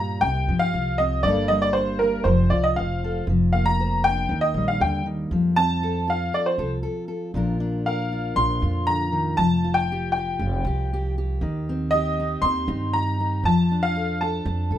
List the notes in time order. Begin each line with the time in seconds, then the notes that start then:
Already playing: G2 A#2 G3 G4 A#5
0.21 C2 C3 G5
0.48 G2 F3
0.59 F5
0.74 C2 F4
0.98 C4 D#5
1.23 G1 G2 G3 A#3 D5
1.27 D4 A4
1.48 G3 D#5
1.62 D5
1.73 D4 C5
1.99 A#3 A#4
2.24 F1 F3 C5
2.50 C2 F4 D5
2.64 D#5
2.76 F1 C5 F5
3.04 A4
3.27 F1 F3
3.53 A#3 F5
3.66 A#5
3.80 C5
4.04 D4 G5
4.29 D#2 D#3
4.41 D#5
4.54 A#1 G3
4.68 F5
4.80 D#2 D3 G5
5.06 D#3
5.31 F2 F3
5.56 C4 A5
5.83 A4
6.08 F4 F5
6.33 A4 D5
6.46 C5
6.58 C2 A4
6.83 A4
7.08 A4
7.34 A#1 A#2 F3 D4 F4 A#4
7.60 D4
7.86 A#4 F5
8.12 F4
8.36 A#1 D4 C6
8.62 F2 F4
8.87 D3 A#5
9.12 D#3
9.37 F1 F3 A5
9.64 F4
9.74 G5
9.92 G4
10.12 G5
10.17 G4
10.39 F1 F4
10.65 C2 G4
10.93 G4
11.18 G4
11.41 D#2 D#3
11.69 C4
11.91 G4 D#5
12.20 D#4
12.42 D#2 C4 C6
12.68 G2 D#4
12.93 G4 A#5
13.20 D#4
13.44 F2 F3 A5
13.71 D4
13.83 F5
13.96 A4
14.21 A4 A5
14.45 F2 D4
14.71 A1 A4